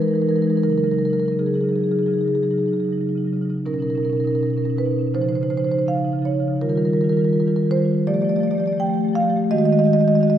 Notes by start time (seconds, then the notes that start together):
Already playing: E3
0.02 E3 G#3 D#4 A#4
0.08 G#3 D#4 A#4
0.14 E3 A#4
0.19 E3 G#3 D#4 A#4
0.26 G#3 D#4 A#4
0.31 E3 G#3
0.36 E3 D#4 A#4
0.42 G#3 D#4 A#4
0.47 E3 G#3 A#4
0.53 E3 D#4
0.57 A#4
0.63 C#3 F#3 D#4 A#4
0.70 C#3 F#3 D#4 A#4
0.78 F#3 D#4 A#4
0.83 C#3 D#4 A#4
0.88 F#3 A#4
0.93 C#3 D#4
0.97 F#3 A#4
1.01 C#3 F#3 D#4 A#4
1.10 C#3 F#3 D#4 A#4
1.18 C#3 F#3 D#4 A#4
1.26 F#3 D#4 A#4
1.32 C#3
1.39 C#3 F#3 D#4 G#4
1.46 C#3 F#3 D#4 G#4
1.54 C#3 F#3 D#4 G#4
1.61 C#3 F#3 D#4 G#4
1.69 F#3 D#4 G#4
1.73 C#3 G#4
1.79 C#3 F#3 D#4
1.84 D#4 G#4
1.89 C#3 F#3 G#4
1.96 C#3 F#3 D#4 G#4
2.03 F#3 D#4 G#4
2.08 C#3 D#4
2.14 C#3 F#3 G#4
2.19 D#4 G#4
2.25 C#3 F#3 D#4 G#4
2.34 C#3 F#3 D#4 G#4
2.42 C#3 F#3 D#4 G#4
2.51 C#3 F#3 D#4 G#4
2.58 F#3 D#4 G#4
2.63 C#3 G#4
2.68 C#3 F#3 D#4
2.73 F#3 D#4 G#4
2.80 C#3 G#4
2.84 F#3 D#4
2.89 C#3 F#3
2.93 D#4
2.98 C#3 F#3 D#4
3.06 C#3 F#3 D#4
3.16 C#3 F#3 D#4
3.25 C#3 F#3 D#4
3.33 C#3 F#3 D#4
3.41 C#3 D#4
3.45 F#3
3.50 C#3 D#4
3.54 F#3 D#4
3.66 B2 C#4 D#4 A#4
3.73 B2 C#4 D#4 A#4
3.79 C#4 D#4 A#4
3.85 B2 C#4 D#4
3.90 A#4
3.94 B2 C#4 D#4 A#4
4.03 B2 C#4 D#4 A#4
4.10 C#4 D#4 A#4
4.14 B2 C#4 D#4
4.20 D#4 A#4
4.24 B2 C#4 A#4
4.31 C#4 D#4
4.35 B2 D#4 A#4
4.41 C#4 A#4
4.46 B2 C#4 D#4
4.50 D#4 A#4
4.56 B2 C#4 A#4
4.62 C#4 D#4 A#4
4.67 B2 C#4 D#4
4.76 B2 C#4 D#4 B4
4.84 B2 C#4 D#4
4.91 C#4 D#4
4.98 B2 C#4 D#4
5.07 C#4
5.14 C#3 F3 D#4 C5
5.22 C#3 F3 D#4 C5
5.29 C#3 D#4 C5
5.33 F3 D#4 C5
5.42 C#3 F3 D#4 C5
5.50 C#3 F3 D#4 C5
5.58 C#3 F3 D#4 C5
5.65 C#3 F3 D#4 C5
5.72 D#4 C5
5.77 C#3 F3 C5
5.82 F3 D#4
5.86 C#3 D#4 F5
5.94 C#3 F3 D#4
6.03 C#3 F3 D#4
6.12 C#3 F3 D#4
6.19 C#3 F3 D#4
6.25 D#4 C#5
6.31 C#3 F3 D#4
6.40 C#3 F3 D#4
6.48 C#3 F3 D#4
6.61 D#3 G3 F4 A#4
6.69 D#3 G3 F4 A#4
6.75 D#3 G3 F4 A#4
6.82 G3 F4 A#4
6.87 D#3 F4
6.93 D#3 G3 F4 A#4
7.01 D#3 G3 F4 A#4
7.09 D#3 G3 F4 A#4
7.17 D#3 G3 F4 A#4
7.25 G3 F4 A#4
7.30 D#3 F4 A#4
7.35 D#3 G3
7.40 G3 F4 A#4
7.47 D#3 F4 A#4
7.53 G3 F4 A#4
7.57 D#3 G3
7.63 D#3 F4
7.70 G3 F4 C5
7.75 D#3 G3 F4
7.84 D#3 G3 F4
7.92 D#3 G3 F4
7.99 F4
8.07 F3 A3 G4 D5
8.14 F3 A3 G4 D5
8.21 F3 A3 G4 D5
8.29 A3 G4 D5
8.34 F3 G4 D5
8.39 F3 A3
8.43 G4 D5
8.47 F3 A3 G4 D5
8.55 A3 G4
8.60 F3 D5
8.64 A3 G4 D5
8.68 F3
8.72 A3 G4
8.77 F3 G4 G5
8.82 F3 A3
8.87 A3 G4
8.94 F3 A3 G4
9.01 F3 A3 G4
9.08 A3 G4
9.13 F3 G4 F5
9.20 F3 A3 G4
9.28 F3 A3 G4
9.36 F3 A3 G4
9.44 A3
9.51 D#3 G#3 F#4 D#5
9.58 D#3 G#3 F#4 D#5
9.65 D#3 G#3 F#4 D#5
9.73 G#3 F#4 D#5
9.79 D#3 F#4 D#5
9.84 D#3 G#3 F#4 D#5
9.92 D#3 G#3 F#4 D#5
10.00 G#3 F#4 D#5
10.04 D#3 F#4 D#5
10.09 D#3 G#3
10.14 G#3 F#4 D#5
10.20 D#3 F#4 D#5
10.25 G#3 F#4
10.30 D#3 G#3 F#4 D#5